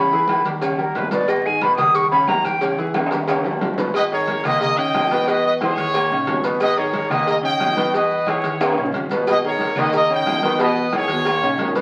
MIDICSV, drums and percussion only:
0, 0, Header, 1, 2, 480
1, 0, Start_track
1, 0, Tempo, 332594
1, 1855, Time_signature, 4, 2, 24, 8
1, 17050, End_track
2, 0, Start_track
2, 0, Title_t, "Drums"
2, 168, Note_on_c, 9, 63, 37
2, 169, Note_on_c, 9, 70, 29
2, 313, Note_off_c, 9, 63, 0
2, 314, Note_off_c, 9, 70, 0
2, 399, Note_on_c, 9, 63, 96
2, 416, Note_on_c, 9, 75, 62
2, 418, Note_on_c, 9, 70, 32
2, 419, Note_on_c, 9, 56, 66
2, 425, Note_on_c, 9, 66, 66
2, 425, Note_on_c, 9, 68, 113
2, 543, Note_off_c, 9, 63, 0
2, 561, Note_off_c, 9, 75, 0
2, 562, Note_off_c, 9, 70, 0
2, 563, Note_off_c, 9, 56, 0
2, 569, Note_off_c, 9, 66, 0
2, 569, Note_off_c, 9, 68, 0
2, 645, Note_on_c, 9, 70, 65
2, 649, Note_on_c, 9, 63, 39
2, 658, Note_on_c, 9, 56, 72
2, 789, Note_off_c, 9, 70, 0
2, 793, Note_off_c, 9, 63, 0
2, 802, Note_off_c, 9, 56, 0
2, 881, Note_on_c, 9, 63, 39
2, 888, Note_on_c, 9, 56, 100
2, 896, Note_on_c, 9, 70, 95
2, 896, Note_on_c, 9, 75, 62
2, 901, Note_on_c, 9, 68, 105
2, 1025, Note_off_c, 9, 63, 0
2, 1032, Note_off_c, 9, 56, 0
2, 1040, Note_off_c, 9, 70, 0
2, 1040, Note_off_c, 9, 75, 0
2, 1045, Note_off_c, 9, 68, 0
2, 1128, Note_on_c, 9, 63, 40
2, 1134, Note_on_c, 9, 70, 29
2, 1144, Note_on_c, 9, 68, 78
2, 1273, Note_off_c, 9, 63, 0
2, 1278, Note_off_c, 9, 70, 0
2, 1288, Note_off_c, 9, 68, 0
2, 1371, Note_on_c, 9, 70, 31
2, 1374, Note_on_c, 9, 56, 73
2, 1375, Note_on_c, 9, 63, 82
2, 1396, Note_on_c, 9, 66, 96
2, 1515, Note_off_c, 9, 70, 0
2, 1519, Note_off_c, 9, 56, 0
2, 1519, Note_off_c, 9, 63, 0
2, 1540, Note_off_c, 9, 66, 0
2, 1603, Note_on_c, 9, 56, 72
2, 1609, Note_on_c, 9, 70, 78
2, 1610, Note_on_c, 9, 63, 93
2, 1747, Note_off_c, 9, 56, 0
2, 1753, Note_off_c, 9, 70, 0
2, 1755, Note_off_c, 9, 63, 0
2, 1846, Note_on_c, 9, 56, 109
2, 1852, Note_on_c, 9, 75, 70
2, 1856, Note_on_c, 9, 70, 83
2, 1863, Note_on_c, 9, 68, 91
2, 1991, Note_off_c, 9, 56, 0
2, 1997, Note_off_c, 9, 75, 0
2, 2000, Note_off_c, 9, 70, 0
2, 2008, Note_off_c, 9, 68, 0
2, 2095, Note_on_c, 9, 70, 29
2, 2097, Note_on_c, 9, 63, 34
2, 2239, Note_off_c, 9, 70, 0
2, 2241, Note_off_c, 9, 63, 0
2, 2329, Note_on_c, 9, 70, 30
2, 2330, Note_on_c, 9, 56, 73
2, 2331, Note_on_c, 9, 63, 98
2, 2336, Note_on_c, 9, 66, 65
2, 2336, Note_on_c, 9, 68, 72
2, 2473, Note_off_c, 9, 70, 0
2, 2474, Note_off_c, 9, 56, 0
2, 2476, Note_off_c, 9, 63, 0
2, 2481, Note_off_c, 9, 66, 0
2, 2481, Note_off_c, 9, 68, 0
2, 2561, Note_on_c, 9, 75, 70
2, 2565, Note_on_c, 9, 70, 71
2, 2570, Note_on_c, 9, 64, 97
2, 2570, Note_on_c, 9, 68, 113
2, 2577, Note_on_c, 9, 56, 74
2, 2705, Note_off_c, 9, 75, 0
2, 2709, Note_off_c, 9, 70, 0
2, 2714, Note_off_c, 9, 64, 0
2, 2715, Note_off_c, 9, 68, 0
2, 2721, Note_off_c, 9, 56, 0
2, 2805, Note_on_c, 9, 70, 105
2, 2810, Note_on_c, 9, 56, 100
2, 2815, Note_on_c, 9, 63, 38
2, 2950, Note_off_c, 9, 70, 0
2, 2955, Note_off_c, 9, 56, 0
2, 2959, Note_off_c, 9, 63, 0
2, 3053, Note_on_c, 9, 68, 82
2, 3055, Note_on_c, 9, 63, 38
2, 3055, Note_on_c, 9, 70, 30
2, 3197, Note_off_c, 9, 68, 0
2, 3199, Note_off_c, 9, 63, 0
2, 3199, Note_off_c, 9, 70, 0
2, 3279, Note_on_c, 9, 63, 91
2, 3284, Note_on_c, 9, 75, 75
2, 3290, Note_on_c, 9, 66, 90
2, 3290, Note_on_c, 9, 68, 115
2, 3291, Note_on_c, 9, 70, 30
2, 3300, Note_on_c, 9, 56, 79
2, 3423, Note_off_c, 9, 63, 0
2, 3429, Note_off_c, 9, 75, 0
2, 3434, Note_off_c, 9, 66, 0
2, 3434, Note_off_c, 9, 68, 0
2, 3435, Note_off_c, 9, 70, 0
2, 3444, Note_off_c, 9, 56, 0
2, 3528, Note_on_c, 9, 63, 95
2, 3530, Note_on_c, 9, 56, 81
2, 3542, Note_on_c, 9, 70, 79
2, 3672, Note_off_c, 9, 63, 0
2, 3675, Note_off_c, 9, 56, 0
2, 3686, Note_off_c, 9, 70, 0
2, 3768, Note_on_c, 9, 56, 117
2, 3773, Note_on_c, 9, 70, 85
2, 3774, Note_on_c, 9, 68, 77
2, 3778, Note_on_c, 9, 63, 34
2, 3912, Note_off_c, 9, 56, 0
2, 3918, Note_off_c, 9, 68, 0
2, 3918, Note_off_c, 9, 70, 0
2, 3922, Note_off_c, 9, 63, 0
2, 4013, Note_on_c, 9, 63, 34
2, 4017, Note_on_c, 9, 70, 30
2, 4157, Note_off_c, 9, 63, 0
2, 4162, Note_off_c, 9, 70, 0
2, 4247, Note_on_c, 9, 63, 112
2, 4249, Note_on_c, 9, 65, 95
2, 4249, Note_on_c, 9, 68, 112
2, 4253, Note_on_c, 9, 75, 71
2, 4258, Note_on_c, 9, 56, 70
2, 4258, Note_on_c, 9, 60, 94
2, 4267, Note_on_c, 9, 70, 31
2, 4391, Note_off_c, 9, 63, 0
2, 4393, Note_off_c, 9, 65, 0
2, 4393, Note_off_c, 9, 68, 0
2, 4397, Note_off_c, 9, 75, 0
2, 4403, Note_off_c, 9, 56, 0
2, 4403, Note_off_c, 9, 60, 0
2, 4412, Note_off_c, 9, 70, 0
2, 4421, Note_on_c, 9, 65, 108
2, 4486, Note_on_c, 9, 56, 79
2, 4486, Note_on_c, 9, 60, 70
2, 4496, Note_on_c, 9, 63, 38
2, 4501, Note_on_c, 9, 70, 77
2, 4566, Note_off_c, 9, 65, 0
2, 4578, Note_on_c, 9, 65, 77
2, 4630, Note_off_c, 9, 56, 0
2, 4630, Note_off_c, 9, 60, 0
2, 4640, Note_off_c, 9, 63, 0
2, 4645, Note_off_c, 9, 70, 0
2, 4722, Note_off_c, 9, 65, 0
2, 4727, Note_on_c, 9, 56, 110
2, 4736, Note_on_c, 9, 70, 101
2, 4737, Note_on_c, 9, 75, 70
2, 4744, Note_on_c, 9, 65, 108
2, 4744, Note_on_c, 9, 68, 121
2, 4872, Note_off_c, 9, 56, 0
2, 4880, Note_off_c, 9, 70, 0
2, 4881, Note_off_c, 9, 75, 0
2, 4889, Note_off_c, 9, 65, 0
2, 4889, Note_off_c, 9, 68, 0
2, 4965, Note_on_c, 9, 61, 91
2, 4980, Note_on_c, 9, 70, 28
2, 4988, Note_on_c, 9, 68, 92
2, 5068, Note_on_c, 9, 66, 99
2, 5109, Note_off_c, 9, 61, 0
2, 5124, Note_off_c, 9, 70, 0
2, 5132, Note_off_c, 9, 68, 0
2, 5212, Note_off_c, 9, 66, 0
2, 5212, Note_on_c, 9, 63, 92
2, 5215, Note_on_c, 9, 56, 80
2, 5215, Note_on_c, 9, 61, 102
2, 5222, Note_on_c, 9, 70, 31
2, 5231, Note_on_c, 9, 66, 89
2, 5357, Note_off_c, 9, 63, 0
2, 5360, Note_off_c, 9, 56, 0
2, 5360, Note_off_c, 9, 61, 0
2, 5367, Note_off_c, 9, 70, 0
2, 5375, Note_off_c, 9, 66, 0
2, 5388, Note_on_c, 9, 66, 73
2, 5452, Note_on_c, 9, 56, 72
2, 5452, Note_on_c, 9, 61, 118
2, 5453, Note_on_c, 9, 63, 96
2, 5458, Note_on_c, 9, 70, 74
2, 5532, Note_off_c, 9, 66, 0
2, 5554, Note_on_c, 9, 66, 76
2, 5596, Note_off_c, 9, 56, 0
2, 5596, Note_off_c, 9, 61, 0
2, 5597, Note_off_c, 9, 63, 0
2, 5603, Note_off_c, 9, 70, 0
2, 5684, Note_on_c, 9, 63, 40
2, 5685, Note_on_c, 9, 56, 114
2, 5697, Note_on_c, 9, 75, 74
2, 5698, Note_off_c, 9, 66, 0
2, 5711, Note_on_c, 9, 70, 92
2, 5719, Note_on_c, 9, 68, 90
2, 5829, Note_off_c, 9, 63, 0
2, 5830, Note_off_c, 9, 56, 0
2, 5841, Note_off_c, 9, 75, 0
2, 5855, Note_off_c, 9, 70, 0
2, 5863, Note_off_c, 9, 68, 0
2, 5943, Note_on_c, 9, 63, 35
2, 5946, Note_on_c, 9, 70, 32
2, 6087, Note_off_c, 9, 63, 0
2, 6091, Note_off_c, 9, 70, 0
2, 6168, Note_on_c, 9, 56, 73
2, 6174, Note_on_c, 9, 63, 108
2, 6181, Note_on_c, 9, 70, 34
2, 6193, Note_on_c, 9, 66, 68
2, 6193, Note_on_c, 9, 68, 73
2, 6312, Note_off_c, 9, 56, 0
2, 6319, Note_off_c, 9, 63, 0
2, 6326, Note_off_c, 9, 70, 0
2, 6338, Note_off_c, 9, 66, 0
2, 6338, Note_off_c, 9, 68, 0
2, 6404, Note_on_c, 9, 56, 74
2, 6421, Note_on_c, 9, 75, 71
2, 6422, Note_on_c, 9, 68, 103
2, 6426, Note_on_c, 9, 64, 99
2, 6427, Note_on_c, 9, 70, 74
2, 6548, Note_off_c, 9, 56, 0
2, 6565, Note_off_c, 9, 75, 0
2, 6567, Note_off_c, 9, 68, 0
2, 6570, Note_off_c, 9, 64, 0
2, 6571, Note_off_c, 9, 70, 0
2, 6649, Note_on_c, 9, 56, 105
2, 6658, Note_on_c, 9, 70, 96
2, 6671, Note_on_c, 9, 63, 39
2, 6671, Note_on_c, 9, 64, 88
2, 6793, Note_off_c, 9, 56, 0
2, 6803, Note_off_c, 9, 70, 0
2, 6815, Note_off_c, 9, 63, 0
2, 6815, Note_off_c, 9, 64, 0
2, 6893, Note_on_c, 9, 68, 90
2, 6901, Note_on_c, 9, 70, 29
2, 6904, Note_on_c, 9, 63, 39
2, 7037, Note_off_c, 9, 68, 0
2, 7045, Note_off_c, 9, 70, 0
2, 7048, Note_off_c, 9, 63, 0
2, 7136, Note_on_c, 9, 56, 81
2, 7139, Note_on_c, 9, 66, 98
2, 7139, Note_on_c, 9, 68, 119
2, 7140, Note_on_c, 9, 63, 93
2, 7142, Note_on_c, 9, 70, 32
2, 7145, Note_on_c, 9, 75, 73
2, 7280, Note_off_c, 9, 56, 0
2, 7283, Note_off_c, 9, 66, 0
2, 7283, Note_off_c, 9, 68, 0
2, 7285, Note_off_c, 9, 63, 0
2, 7287, Note_off_c, 9, 70, 0
2, 7290, Note_off_c, 9, 75, 0
2, 7376, Note_on_c, 9, 56, 81
2, 7380, Note_on_c, 9, 63, 86
2, 7387, Note_on_c, 9, 70, 84
2, 7521, Note_off_c, 9, 56, 0
2, 7525, Note_off_c, 9, 63, 0
2, 7532, Note_off_c, 9, 70, 0
2, 7615, Note_on_c, 9, 56, 123
2, 7615, Note_on_c, 9, 68, 86
2, 7621, Note_on_c, 9, 70, 90
2, 7628, Note_on_c, 9, 63, 40
2, 7760, Note_off_c, 9, 56, 0
2, 7760, Note_off_c, 9, 68, 0
2, 7765, Note_off_c, 9, 70, 0
2, 7772, Note_off_c, 9, 63, 0
2, 7864, Note_on_c, 9, 70, 28
2, 7868, Note_on_c, 9, 63, 35
2, 8008, Note_off_c, 9, 70, 0
2, 8012, Note_off_c, 9, 63, 0
2, 8093, Note_on_c, 9, 66, 66
2, 8093, Note_on_c, 9, 68, 108
2, 8099, Note_on_c, 9, 56, 69
2, 8104, Note_on_c, 9, 63, 111
2, 8104, Note_on_c, 9, 70, 36
2, 8109, Note_on_c, 9, 75, 66
2, 8237, Note_off_c, 9, 66, 0
2, 8237, Note_off_c, 9, 68, 0
2, 8243, Note_off_c, 9, 56, 0
2, 8248, Note_off_c, 9, 63, 0
2, 8248, Note_off_c, 9, 70, 0
2, 8254, Note_off_c, 9, 75, 0
2, 8337, Note_on_c, 9, 56, 75
2, 8339, Note_on_c, 9, 63, 40
2, 8340, Note_on_c, 9, 70, 73
2, 8482, Note_off_c, 9, 56, 0
2, 8483, Note_off_c, 9, 63, 0
2, 8485, Note_off_c, 9, 70, 0
2, 8572, Note_on_c, 9, 68, 118
2, 8575, Note_on_c, 9, 70, 105
2, 8576, Note_on_c, 9, 56, 113
2, 8579, Note_on_c, 9, 63, 43
2, 8584, Note_on_c, 9, 75, 66
2, 8717, Note_off_c, 9, 68, 0
2, 8719, Note_off_c, 9, 70, 0
2, 8721, Note_off_c, 9, 56, 0
2, 8723, Note_off_c, 9, 63, 0
2, 8728, Note_off_c, 9, 75, 0
2, 8813, Note_on_c, 9, 63, 39
2, 8817, Note_on_c, 9, 68, 87
2, 8818, Note_on_c, 9, 70, 31
2, 8958, Note_off_c, 9, 63, 0
2, 8961, Note_off_c, 9, 68, 0
2, 8962, Note_off_c, 9, 70, 0
2, 9051, Note_on_c, 9, 56, 86
2, 9056, Note_on_c, 9, 63, 82
2, 9056, Note_on_c, 9, 66, 97
2, 9059, Note_on_c, 9, 70, 29
2, 9195, Note_off_c, 9, 56, 0
2, 9200, Note_off_c, 9, 63, 0
2, 9200, Note_off_c, 9, 66, 0
2, 9203, Note_off_c, 9, 70, 0
2, 9289, Note_on_c, 9, 70, 84
2, 9295, Note_on_c, 9, 56, 73
2, 9296, Note_on_c, 9, 63, 87
2, 9433, Note_off_c, 9, 70, 0
2, 9439, Note_off_c, 9, 56, 0
2, 9440, Note_off_c, 9, 63, 0
2, 9528, Note_on_c, 9, 68, 110
2, 9529, Note_on_c, 9, 70, 98
2, 9532, Note_on_c, 9, 63, 38
2, 9535, Note_on_c, 9, 75, 73
2, 9537, Note_on_c, 9, 56, 119
2, 9672, Note_off_c, 9, 68, 0
2, 9673, Note_off_c, 9, 70, 0
2, 9676, Note_off_c, 9, 63, 0
2, 9679, Note_off_c, 9, 75, 0
2, 9681, Note_off_c, 9, 56, 0
2, 9774, Note_on_c, 9, 63, 37
2, 9782, Note_on_c, 9, 70, 30
2, 9918, Note_off_c, 9, 63, 0
2, 9926, Note_off_c, 9, 70, 0
2, 10007, Note_on_c, 9, 63, 104
2, 10011, Note_on_c, 9, 56, 71
2, 10015, Note_on_c, 9, 66, 63
2, 10015, Note_on_c, 9, 68, 76
2, 10019, Note_on_c, 9, 70, 31
2, 10151, Note_off_c, 9, 63, 0
2, 10155, Note_off_c, 9, 56, 0
2, 10159, Note_off_c, 9, 66, 0
2, 10159, Note_off_c, 9, 68, 0
2, 10163, Note_off_c, 9, 70, 0
2, 10249, Note_on_c, 9, 64, 97
2, 10258, Note_on_c, 9, 68, 113
2, 10258, Note_on_c, 9, 75, 73
2, 10263, Note_on_c, 9, 56, 73
2, 10267, Note_on_c, 9, 70, 69
2, 10393, Note_off_c, 9, 64, 0
2, 10402, Note_off_c, 9, 68, 0
2, 10403, Note_off_c, 9, 75, 0
2, 10407, Note_off_c, 9, 56, 0
2, 10411, Note_off_c, 9, 70, 0
2, 10491, Note_on_c, 9, 63, 39
2, 10494, Note_on_c, 9, 56, 103
2, 10498, Note_on_c, 9, 70, 100
2, 10635, Note_off_c, 9, 63, 0
2, 10638, Note_off_c, 9, 56, 0
2, 10642, Note_off_c, 9, 70, 0
2, 10723, Note_on_c, 9, 63, 40
2, 10740, Note_on_c, 9, 68, 85
2, 10751, Note_on_c, 9, 70, 29
2, 10868, Note_off_c, 9, 63, 0
2, 10884, Note_off_c, 9, 68, 0
2, 10895, Note_off_c, 9, 70, 0
2, 10972, Note_on_c, 9, 56, 81
2, 10973, Note_on_c, 9, 66, 86
2, 10973, Note_on_c, 9, 68, 115
2, 10976, Note_on_c, 9, 63, 89
2, 10980, Note_on_c, 9, 75, 72
2, 10982, Note_on_c, 9, 70, 32
2, 11116, Note_off_c, 9, 56, 0
2, 11117, Note_off_c, 9, 66, 0
2, 11117, Note_off_c, 9, 68, 0
2, 11121, Note_off_c, 9, 63, 0
2, 11124, Note_off_c, 9, 75, 0
2, 11126, Note_off_c, 9, 70, 0
2, 11214, Note_on_c, 9, 63, 105
2, 11225, Note_on_c, 9, 56, 77
2, 11230, Note_on_c, 9, 70, 83
2, 11358, Note_off_c, 9, 63, 0
2, 11370, Note_off_c, 9, 56, 0
2, 11374, Note_off_c, 9, 70, 0
2, 11457, Note_on_c, 9, 63, 42
2, 11458, Note_on_c, 9, 56, 106
2, 11462, Note_on_c, 9, 68, 77
2, 11463, Note_on_c, 9, 70, 90
2, 11601, Note_off_c, 9, 63, 0
2, 11602, Note_off_c, 9, 56, 0
2, 11607, Note_off_c, 9, 68, 0
2, 11607, Note_off_c, 9, 70, 0
2, 11685, Note_on_c, 9, 63, 40
2, 11702, Note_on_c, 9, 70, 32
2, 11829, Note_off_c, 9, 63, 0
2, 11846, Note_off_c, 9, 70, 0
2, 11929, Note_on_c, 9, 63, 95
2, 11932, Note_on_c, 9, 66, 63
2, 11932, Note_on_c, 9, 68, 107
2, 11945, Note_on_c, 9, 56, 71
2, 11947, Note_on_c, 9, 75, 70
2, 11949, Note_on_c, 9, 70, 34
2, 12073, Note_off_c, 9, 63, 0
2, 12077, Note_off_c, 9, 66, 0
2, 12077, Note_off_c, 9, 68, 0
2, 12089, Note_off_c, 9, 56, 0
2, 12092, Note_off_c, 9, 75, 0
2, 12093, Note_off_c, 9, 70, 0
2, 12171, Note_on_c, 9, 63, 38
2, 12178, Note_on_c, 9, 56, 78
2, 12186, Note_on_c, 9, 70, 69
2, 12315, Note_off_c, 9, 63, 0
2, 12322, Note_off_c, 9, 56, 0
2, 12330, Note_off_c, 9, 70, 0
2, 12419, Note_on_c, 9, 70, 99
2, 12423, Note_on_c, 9, 65, 113
2, 12423, Note_on_c, 9, 68, 125
2, 12425, Note_on_c, 9, 56, 104
2, 12430, Note_on_c, 9, 75, 68
2, 12563, Note_off_c, 9, 70, 0
2, 12567, Note_off_c, 9, 65, 0
2, 12567, Note_off_c, 9, 68, 0
2, 12569, Note_off_c, 9, 56, 0
2, 12574, Note_off_c, 9, 75, 0
2, 12588, Note_on_c, 9, 65, 105
2, 12652, Note_on_c, 9, 63, 39
2, 12658, Note_on_c, 9, 70, 27
2, 12671, Note_on_c, 9, 68, 93
2, 12732, Note_off_c, 9, 65, 0
2, 12751, Note_on_c, 9, 66, 71
2, 12796, Note_off_c, 9, 63, 0
2, 12802, Note_off_c, 9, 70, 0
2, 12815, Note_off_c, 9, 68, 0
2, 12881, Note_on_c, 9, 63, 95
2, 12895, Note_off_c, 9, 66, 0
2, 12902, Note_on_c, 9, 70, 29
2, 12903, Note_on_c, 9, 56, 85
2, 13025, Note_off_c, 9, 63, 0
2, 13046, Note_off_c, 9, 70, 0
2, 13047, Note_off_c, 9, 56, 0
2, 13126, Note_on_c, 9, 63, 95
2, 13142, Note_on_c, 9, 70, 77
2, 13146, Note_on_c, 9, 56, 75
2, 13227, Note_on_c, 9, 66, 83
2, 13271, Note_off_c, 9, 63, 0
2, 13287, Note_off_c, 9, 70, 0
2, 13290, Note_off_c, 9, 56, 0
2, 13366, Note_on_c, 9, 63, 38
2, 13371, Note_off_c, 9, 66, 0
2, 13381, Note_on_c, 9, 70, 101
2, 13385, Note_on_c, 9, 75, 72
2, 13386, Note_on_c, 9, 56, 101
2, 13394, Note_on_c, 9, 68, 101
2, 13510, Note_off_c, 9, 63, 0
2, 13526, Note_off_c, 9, 70, 0
2, 13529, Note_off_c, 9, 75, 0
2, 13530, Note_off_c, 9, 56, 0
2, 13538, Note_off_c, 9, 68, 0
2, 13621, Note_on_c, 9, 70, 32
2, 13765, Note_off_c, 9, 70, 0
2, 13837, Note_on_c, 9, 63, 104
2, 13851, Note_on_c, 9, 70, 34
2, 13863, Note_on_c, 9, 56, 72
2, 13867, Note_on_c, 9, 66, 72
2, 13867, Note_on_c, 9, 68, 83
2, 13982, Note_off_c, 9, 63, 0
2, 13996, Note_off_c, 9, 70, 0
2, 14008, Note_off_c, 9, 56, 0
2, 14011, Note_off_c, 9, 66, 0
2, 14011, Note_off_c, 9, 68, 0
2, 14083, Note_on_c, 9, 64, 107
2, 14084, Note_on_c, 9, 75, 73
2, 14086, Note_on_c, 9, 70, 70
2, 14096, Note_on_c, 9, 56, 75
2, 14102, Note_on_c, 9, 68, 98
2, 14227, Note_off_c, 9, 64, 0
2, 14229, Note_off_c, 9, 75, 0
2, 14230, Note_off_c, 9, 70, 0
2, 14241, Note_off_c, 9, 56, 0
2, 14246, Note_off_c, 9, 68, 0
2, 14323, Note_on_c, 9, 63, 41
2, 14330, Note_on_c, 9, 70, 98
2, 14335, Note_on_c, 9, 56, 100
2, 14468, Note_off_c, 9, 63, 0
2, 14475, Note_off_c, 9, 70, 0
2, 14479, Note_off_c, 9, 56, 0
2, 14567, Note_on_c, 9, 63, 39
2, 14568, Note_on_c, 9, 70, 31
2, 14583, Note_on_c, 9, 68, 83
2, 14711, Note_off_c, 9, 63, 0
2, 14713, Note_off_c, 9, 70, 0
2, 14727, Note_off_c, 9, 68, 0
2, 14812, Note_on_c, 9, 63, 97
2, 14813, Note_on_c, 9, 56, 80
2, 14814, Note_on_c, 9, 70, 30
2, 14823, Note_on_c, 9, 75, 72
2, 14824, Note_on_c, 9, 66, 90
2, 14824, Note_on_c, 9, 68, 116
2, 14956, Note_off_c, 9, 63, 0
2, 14957, Note_off_c, 9, 56, 0
2, 14958, Note_off_c, 9, 70, 0
2, 14968, Note_off_c, 9, 75, 0
2, 14969, Note_off_c, 9, 66, 0
2, 14969, Note_off_c, 9, 68, 0
2, 15046, Note_on_c, 9, 70, 81
2, 15051, Note_on_c, 9, 56, 73
2, 15053, Note_on_c, 9, 63, 104
2, 15190, Note_off_c, 9, 70, 0
2, 15195, Note_off_c, 9, 56, 0
2, 15197, Note_off_c, 9, 63, 0
2, 15281, Note_on_c, 9, 56, 112
2, 15291, Note_on_c, 9, 70, 95
2, 15298, Note_on_c, 9, 68, 72
2, 15304, Note_on_c, 9, 63, 42
2, 15426, Note_off_c, 9, 56, 0
2, 15435, Note_off_c, 9, 70, 0
2, 15442, Note_off_c, 9, 68, 0
2, 15449, Note_off_c, 9, 63, 0
2, 15533, Note_on_c, 9, 70, 33
2, 15549, Note_on_c, 9, 63, 38
2, 15677, Note_off_c, 9, 70, 0
2, 15693, Note_off_c, 9, 63, 0
2, 15766, Note_on_c, 9, 56, 71
2, 15766, Note_on_c, 9, 75, 65
2, 15767, Note_on_c, 9, 66, 69
2, 15767, Note_on_c, 9, 68, 117
2, 15772, Note_on_c, 9, 70, 31
2, 15774, Note_on_c, 9, 63, 98
2, 15910, Note_off_c, 9, 56, 0
2, 15910, Note_off_c, 9, 75, 0
2, 15911, Note_off_c, 9, 66, 0
2, 15911, Note_off_c, 9, 68, 0
2, 15916, Note_off_c, 9, 70, 0
2, 15918, Note_off_c, 9, 63, 0
2, 15990, Note_on_c, 9, 56, 84
2, 16012, Note_on_c, 9, 70, 69
2, 16013, Note_on_c, 9, 63, 37
2, 16135, Note_off_c, 9, 56, 0
2, 16156, Note_off_c, 9, 70, 0
2, 16158, Note_off_c, 9, 63, 0
2, 16237, Note_on_c, 9, 56, 102
2, 16239, Note_on_c, 9, 68, 126
2, 16248, Note_on_c, 9, 63, 41
2, 16256, Note_on_c, 9, 70, 97
2, 16260, Note_on_c, 9, 75, 64
2, 16381, Note_off_c, 9, 56, 0
2, 16383, Note_off_c, 9, 68, 0
2, 16392, Note_off_c, 9, 63, 0
2, 16400, Note_off_c, 9, 70, 0
2, 16405, Note_off_c, 9, 75, 0
2, 16478, Note_on_c, 9, 68, 91
2, 16495, Note_on_c, 9, 70, 29
2, 16499, Note_on_c, 9, 63, 39
2, 16622, Note_off_c, 9, 68, 0
2, 16639, Note_off_c, 9, 70, 0
2, 16643, Note_off_c, 9, 63, 0
2, 16712, Note_on_c, 9, 66, 92
2, 16725, Note_on_c, 9, 56, 88
2, 16727, Note_on_c, 9, 70, 29
2, 16731, Note_on_c, 9, 63, 90
2, 16856, Note_off_c, 9, 66, 0
2, 16869, Note_off_c, 9, 56, 0
2, 16871, Note_off_c, 9, 70, 0
2, 16876, Note_off_c, 9, 63, 0
2, 16963, Note_on_c, 9, 56, 76
2, 16964, Note_on_c, 9, 70, 83
2, 16974, Note_on_c, 9, 63, 95
2, 17050, Note_off_c, 9, 56, 0
2, 17050, Note_off_c, 9, 63, 0
2, 17050, Note_off_c, 9, 70, 0
2, 17050, End_track
0, 0, End_of_file